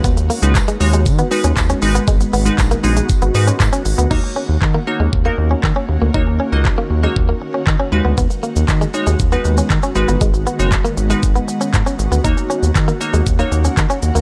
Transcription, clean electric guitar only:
X:1
M:4/4
L:1/16
Q:1/4=118
K:Ebm
V:1 name="Clean electric guitar"
=B, z _B, z2 ^G, z G, z =B, z D z D z C | A, z C z2 B, z A, z C z D z D z C | E z D z2 B, z A, z B, z D z D z B, | E z D z2 B, z A, z B, z D z D z =B, |
=B, z _B, z2 ^G, z G, z =B, z D z D z C | A, z C z2 B, z A, z C z D z D z C | E z D z2 B, z A, z B, z D z D z B, |]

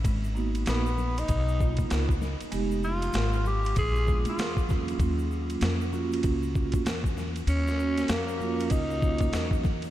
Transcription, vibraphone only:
X:1
M:4/4
L:1/8
Q:"Swing 16ths" 1/4=97
K:Ebm
V:1 name="Vibraphone"
z [B,CEG] z3 [B,CEF] z2 | [A,CE=G] z4 [A,C=DF] z [_G,B,_DF] | [G,B,DF]3 [B,DFG]3 z2 | z [B,DG]2 [B,DFG]3 [G,B,DG] z |]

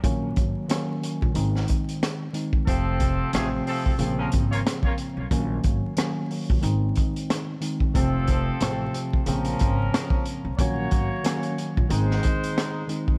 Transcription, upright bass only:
X:1
M:4/4
L:1/16
Q:"Swing 16ths" 1/4=91
K:Bbm
V:1 name="Upright bass" clef=bass
B,,,2 A,,, z4 B,,, A,,,2 z6 | F,,,4 =A,,,2 z2 B,,,2 _A,,,2 z3 _C,, | B,,,2 A,,, z4 B,,, A,,,2 z6 | F,,,4 =A,,,2 z2 B,,,2 _A,,,2 z3 _C,, |
B,,,2 A,,, z4 B,,, A,,,2 z6 |]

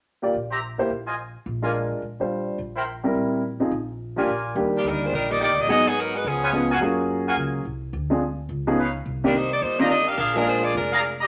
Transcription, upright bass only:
X:1
M:4/4
L:1/8
Q:"Swing" 1/4=213
K:Eb
V:1 name="Upright bass" clef=bass
z2 B,,,3 z B,,,2- | B,,, z B,,,3 z B,,,2- | B,,, z B,,,3 z B,,,2- | B,,, z B,,,3 z B,,,2 |
E,,2 D,,2 B,,,2- (3B,,, D,, B,,, | A,,,4 _D,,4 | _G,,4 _D,,2 C,,2 | D,,4 _D,,4 |
C,,4 G,,,4 | B,,,4 F,,,4 |]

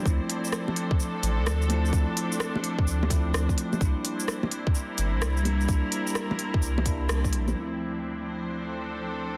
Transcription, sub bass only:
X:1
M:4/4
L:1/16
Q:"Swing 16ths" 1/4=128
K:Dm
V:1 name="Sub bass" clef=bass
D,, z8 z A,,, C,, D,,4 | D,, z6 z D,,4 D,, z3 | C,, z8 z G,,, B,,, C,,4 | C,, z6 z C,,4 C,,2 B,,,2 |
z16 |]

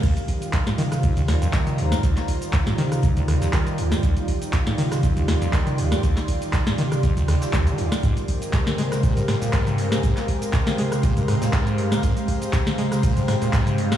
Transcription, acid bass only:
X:1
M:4/4
L:1/16
Q:"Swing 16ths" 1/4=120
K:Eb
V:1 name="Acid bass" clef=bass
E,, z3 E,, A,, E, z F,, D,, E,, F,, E,2 D,, A,, | E,, z3 E,, A,, E, z F,, D,, E,, F,, E,2 D,, A,, | E,, z3 E,, A,, E, z F,, D,, E,, F,, E,2 D,, A,, | E,, z3 E,, A,, E, z F,, D,, E,, z E,, E, E,, z |
A,, z3 A,, D, A, z B,, G,, A,, B,, A,,2 G,, D, | A,, z3 A,, D, A, z B,, G,, A,, B,, A,,2 G,, D, | A,, z3 A,, D, A, z B,, G,, A,, B,, A,,2 G,, D, |]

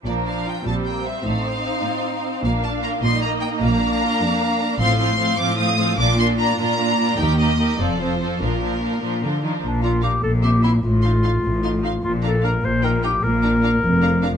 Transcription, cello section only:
X:1
M:6/8
L:1/8
Q:3/8=100
K:Bb
V:1 name="Cello section" clef=bass
B,,3 B,,3 | A,,3 A,,3 | B,,3 B,,3 | B,,3 F,,3 |
A,,3 A,,3 | B,,3 B,,3 | E,,3 F,,3 | B,,3 B,, D, E, |
B,,3 B,,3 | A,,3 A,,3 | B,,3 B,,3 | B,,3 F,,3 |]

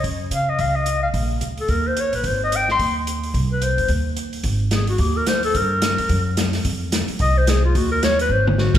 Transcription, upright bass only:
X:1
M:4/4
L:1/8
Q:"Swing" 1/4=218
K:Ab
V:1 name="Upright bass" clef=bass
_G,,2 D,2 D,,4 | B,,,2 =D,,2 E,,3 B,,, | A,,,4 E,,4 | C,,3 G,,, E,,4 |
A,,,4 E,,4 | G,,3 F,, _G,,4 | F,,3 z C,,4 | E,,4 A,,,3 z |]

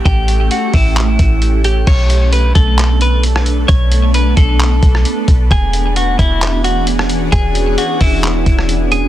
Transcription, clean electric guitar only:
X:1
M:4/4
L:1/8
Q:1/4=132
K:Bm
V:1 name="Clean electric guitar"
G2 F E4 G | c2 B A2 B z2 | c2 B A4- A | ^G2 F E2 F z2 |
^G2 F E4 G |]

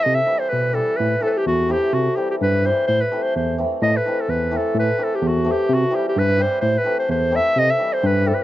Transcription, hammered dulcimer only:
X:1
M:2/4
L:1/8
Q:"Swing 16ths" 1/4=128
K:Am
V:1 name="Hammered dulcimer"
z [E,G,CE] z [E,G,CE] | z [E,A,CE] z [E,A,CE] | z [E,G,CE] z [E,G,CE] | z [E,A,CE] z [E,A,CE] |
z [E,A,CE] z [E,A,CE] | z [E,A,CE] z [E,A,CE] | z [E,G,CE] z [E,G,CE] | z [E,A,CE] z [E,A,CE] |
z [E,G,CE] z [E,G,CE] |]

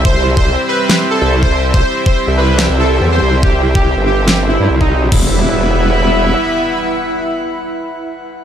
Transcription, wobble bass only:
X:1
M:4/4
L:1/16
Q:1/4=142
K:Em
V:1 name="Wobble bass" clef=bass
C,, C,,4 z6 C,,4- C,, | C,, z4 C,,4 C,,3 E,,2 C,,2- | C,, C,,4 G,,,6 G,, C,,4 | E,,,12 z4 |
z16 |]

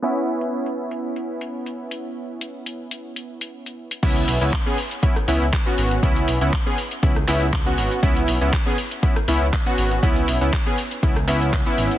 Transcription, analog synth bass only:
X:1
M:4/4
L:1/16
Q:"Swing 16ths" 1/4=120
K:C#m
V:1 name="Analog synth bass" clef=bass
z16 | z16 | C,,2 B,,, C,, z6 C,, C,, z2 G,,,2 | C,,2 B,,, C,, z4 C,,2 C,,4 G,,, z |
C,,2 B,,, C,, z6 C,, C,, z2 G,,,2 | C,,2 B,,, C,, z4 C,,4- C,, z G,,, z |]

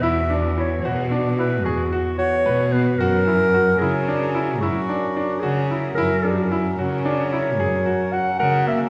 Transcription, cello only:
X:1
M:11/8
L:1/8
Q:1/4=111
K:F#m
V:1 name="Cello" clef=bass
E,,3 B,,3 E,, z2 B,,2 | F,,3 C,3 F,, z2 C,2 | F,,3 C,3 F,, z2 C,2 |]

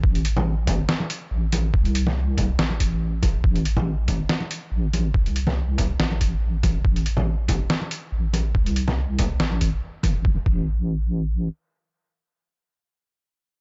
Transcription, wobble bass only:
X:1
M:4/4
L:1/8
Q:"Swing 16ths" 1/4=141
K:Am
V:1 name="Wobble bass" clef=bass
A,,,4 z2 A,,,2 | C,,4 A,,,4 | A,,,4 z2 A,,,2 | C,,4 A,,,4 |
A,,,4 z2 A,,,2 | C,,4 A,,,2 z G,,, | A,,, A,,,4- A,,, z2 | z8 |]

